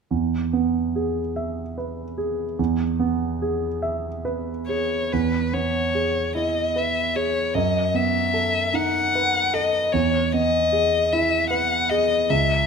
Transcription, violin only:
4.68 C#5
5.12 B4
5.54 C#5
6.36 D#5
6.78 E5
7.16 C#5
7.54 D#5
7.96 E5
8.75 F#5
9.54 D#5
9.93 C#5
10.33 D#5
11.12 E5
11.50 F#5
11.89 D#5
12.30 E5

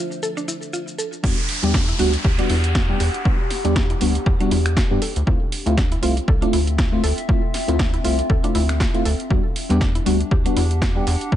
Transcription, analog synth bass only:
1.24 E2
1.63 E2
1.99 D2
2.25 D2
2.50 E2
3.00 E2
3.65 E2
4.01 D2
4.26 E2
4.51 E2
4.91 G2
5.16 D2
5.27 D2
5.66 D2
6.03 C2
6.28 C2
6.53 D2
7.04 D2
7.68 D2
8.05 C2
8.30 D2
8.55 D2
9.06 D2
9.31 E2
9.70 E2
10.06 D2
10.31 D2
10.57 E2
11.07 E2

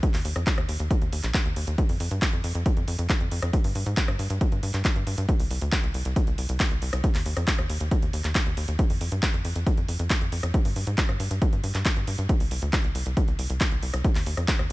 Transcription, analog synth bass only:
0.14 D#2
0.25 D#2
0.36 F2
0.58 D#2
0.69 D#2
0.80 D#2
1.01 D#2
1.12 D#2
1.23 A#1
1.45 D#2
1.56 D#2
1.67 D#2
1.89 F2
2.00 F2
2.11 G2
2.33 F2
2.44 F2
2.55 F2
2.77 F2
2.88 F2
2.99 F2
3.20 F2
3.31 F2
3.42 F2
3.64 G2
3.75 G2
3.86 G#2
4.08 G2
4.19 G2
4.30 G2
4.52 G2
4.63 G2
4.74 G2
4.96 G2
5.07 G2
5.18 G2
5.40 C2
5.51 C2
5.62 D2
5.83 C2
5.94 C2
6.05 C2
6.27 C2
6.38 C2
6.49 C2
6.71 C2
6.82 C2
6.93 C2
7.15 D#2
7.26 D#2
7.37 F2
7.59 D#2
7.70 D#2
7.80 D#2
8.02 D#2
8.13 D#2
8.24 D#2
8.46 D#2
8.57 D#2
8.68 D#2
8.90 F2
9.01 F2
9.12 G2
9.34 F2
9.45 F2
9.56 F2
9.77 F2
9.88 F2
9.99 F2
10.21 F2
10.32 F2
10.43 F2
10.65 G2
10.76 G2
10.87 G#2
11.09 G2
11.20 G2
11.31 G2
11.53 G2
11.64 G2
11.75 G2
11.96 G2
12.07 G2
12.18 G2
12.40 C2
12.51 C2
12.62 D2
12.84 C2
12.95 C2
13.06 C2
13.28 C2
13.39 C2
13.50 C2
13.72 C2
13.83 C2
13.94 C2
14.15 D#2
14.26 D#2
14.37 F2
14.59 D#2

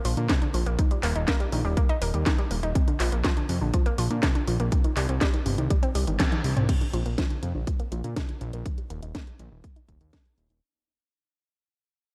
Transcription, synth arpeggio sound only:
0.05 F3
0.17 D3
0.29 C3
0.42 D3
0.54 F3
0.66 A#3
0.79 D#3
0.91 G3
1.03 A#3
1.16 D#4
1.28 A#3
1.40 G3
1.52 D#3
1.65 G3
1.77 A#3
1.89 D#4
2.02 A#3
2.14 G3
2.26 D#3
2.38 G3
2.51 A#3
2.63 D#4
2.75 C3
2.88 D3
3.00 F3
3.12 A#3
3.25 F3
3.37 D3
3.49 C3
3.61 D3
3.74 F3
3.86 A#3
3.98 F3
4.11 D3
4.23 C3
4.35 D3
4.47 F3
4.60 A#3
4.72 C3
4.84 D#3
4.97 G3
5.09 C4
5.21 G3
5.34 D#3
5.46 C3
5.58 D#3
5.70 G3
5.83 C4
5.95 G3
6.07 D#3
6.20 C3
6.32 D#3
6.44 G3
6.57 C4
6.69 C3
6.81 D3
6.93 F3
7.06 A#3
7.18 F3
7.30 D3
7.43 C3
7.55 D3
7.67 F3
7.80 A#3
7.92 F3
8.04 D3
8.17 C3
8.29 D3
8.41 F3
8.53 A#3
8.66 D#3
8.78 G3
8.90 A#3
9.02 D#4
9.15 A#3
9.27 G3
9.39 D#3
9.52 G3
9.64 A#3
9.76 D#4
9.89 A#3
10.01 G3
10.13 D#3
10.25 G3
10.38 A#3
10.50 D#4

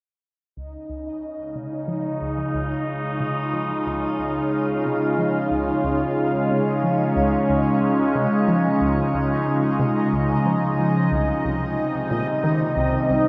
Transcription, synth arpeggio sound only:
0.57 C#2
0.90 C#2
1.56 C3
1.88 F3
2.21 C#2
2.54 C#2
3.20 C3
3.53 F3
3.86 C#2
4.19 C#2
4.85 C3
5.18 F3
5.51 C#2
5.84 C#2
6.50 C3
6.83 F3
7.16 C#2
7.50 C#2
8.15 C3
8.48 F3
8.81 C#2
9.14 C#2
9.80 C3
10.13 C#2
10.46 F3
10.79 F3
11.12 C2
11.45 C2
12.11 A#2
12.44 D#3
12.77 C2
13.10 C2

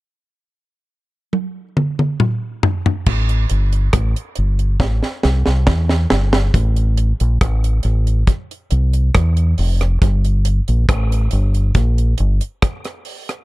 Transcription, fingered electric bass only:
3.07 A1
3.51 G1
3.94 A1
4.38 G1
4.80 A1
5.25 C2
5.47 C2
5.68 E2
6.12 G1
6.54 A1
7.21 A#1
7.42 A1
7.85 A1
8.72 C2
9.16 E2
9.59 F1
10.02 G1
10.69 A#1
10.89 A1
11.33 G1
11.75 A#1
12.20 G1

